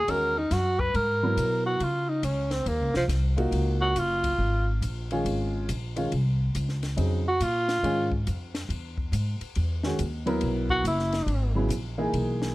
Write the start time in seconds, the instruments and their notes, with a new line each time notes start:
Already playing: tenor saxophone G#4
0.08 upright bass E2, upright piano D#3 G#3 C#4 F#4, tenor saxophone A#4, ride
0.38 tenor saxophone D#4
0.51 upright bass F#2, tenor saxophone F#4, snare, hi-hat pedal, ride
0.79 tenor saxophone B4, kick
0.94 upright bass G#2, tenor saxophone A#4, ride
1.23 upright piano F#3 B3 E4 A#4
1.37 upright bass B2, hi-hat pedal, ride
1.66 tenor saxophone F#4
1.80 upright bass C#3, tenor saxophone F4, ride
2.09 tenor saxophone D#4
2.23 upright bass C#2, tenor saxophone C#4, hi-hat pedal, ride
2.51 tenor saxophone C4, snare, ride
2.66 upright bass D#2, tenor saxophone A#3, ride
2.81 upright bass C#2
2.94 upright bass C2, tenor saxophone F3, snare
3.08 upright bass C2, snare, hi-hat pedal, ride
3.37 upright piano A#3 D#4 F4 F#4, kick, ride
3.52 upright bass C#2, ride
3.81 tenor saxophone F#4
3.96 upright bass F#1, tenor saxophone F4, hi-hat pedal, ride
4.24 kick, ride
4.38 upright bass G#1
4.82 upright bass A#1, hi-hat pedal, ride
5.11 upright piano D#3 G#3 C#4 F4, ride
5.25 upright bass G#1, ride
5.69 upright bass A#1, hi-hat pedal, ride
5.96 upright piano D#3 G#3 C#4 F4, ride
6.12 upright bass C2, ride
6.55 upright bass C#2, hi-hat pedal, ride
6.69 snare
6.83 snare, ride
6.96 upright bass F2, upright piano C#3 F#3 C4 D#4, ride
7.27 tenor saxophone F#4
7.41 upright bass A#2, tenor saxophone F4, hi-hat pedal, ride
7.69 snare, ride
7.83 upright bass G#2, upright piano D#3 G#3 C#4 F4, ride
8.12 kick
8.27 upright bass F2, hi-hat pedal, ride
8.55 snare, ride
8.69 upright bass E2, ride
8.98 kick
9.12 upright bass G#2, hi-hat pedal, ride
9.41 muted upright bass stroke, ride
9.55 upright bass E2, ride
9.83 upright piano D#3 G#3 C#4 F#4, snare
9.99 upright bass D#2, hi-hat pedal, ride
10.26 upright piano F#3 B3 E4 A#4, ride
10.41 upright bass B1, ride
10.69 tenor saxophone F#4, kick
10.84 upright bass F#1, tenor saxophone E4, hi-hat pedal, ride
10.99 snare
11.12 snare, ride
11.26 upright bass G#1, ride
11.55 upright piano C#3 F#3 B3 E4
11.69 upright bass A#1, hi-hat pedal, ride
11.98 upright piano E3 A#3 D#4 G#4
12.13 upright bass B1, ride
12.42 snare